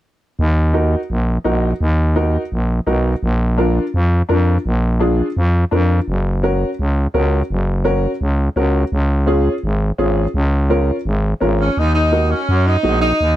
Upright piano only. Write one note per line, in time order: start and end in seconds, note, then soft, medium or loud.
0.74 0.99 D#4 medium
0.74 0.99 F#4 medium
0.74 0.99 A#4 medium
1.44 1.70 D#4 medium
1.44 1.70 F#4 medium
1.44 1.70 A#4 medium
2.16 2.41 D#4 medium
2.16 2.41 F#4 medium
2.16 2.41 A#4 medium
2.86 3.12 D#4 medium
2.86 3.12 F#4 medium
2.86 3.12 A#4 medium
3.57 3.83 D4 medium
3.57 3.83 F4 medium
3.57 3.83 A#4 medium
4.29 4.54 D4 medium
4.29 4.54 F4 medium
4.29 4.54 A#4 medium
5.00 5.25 D4 medium
5.00 5.26 F4 medium
5.00 5.26 G#4 medium
5.71 5.96 D4 medium
5.71 5.97 F4 medium
5.71 5.97 A#4 medium
6.43 6.68 C#4 medium
6.43 6.68 F#4 medium
6.43 6.68 A#4 medium
7.14 7.39 C#4 medium
7.14 7.39 F#4 medium
7.14 7.39 A#4 medium
7.84 8.10 C#4 medium
7.84 8.10 F#4 medium
7.84 8.10 A#4 medium
8.56 8.81 C#4 medium
8.56 8.81 F#4 medium
8.56 8.82 A#4 medium
9.26 9.52 C#4 medium
9.26 9.52 F4 medium
9.26 9.52 G#4 medium
9.98 10.23 C#4 medium
9.98 10.23 F4 medium
9.98 10.24 G#4 medium
10.70 10.95 C#4 medium
10.70 10.95 F4 medium
10.70 10.95 A#4 medium
11.40 11.66 C#4 medium
11.40 11.66 F4 medium
11.40 11.66 A#4 medium
12.12 12.37 D#4 medium
12.12 12.37 F#4 medium
12.12 12.37 A#4 medium
12.83 13.08 D#4 medium
12.83 13.09 F#4 medium
12.83 13.09 G#4 medium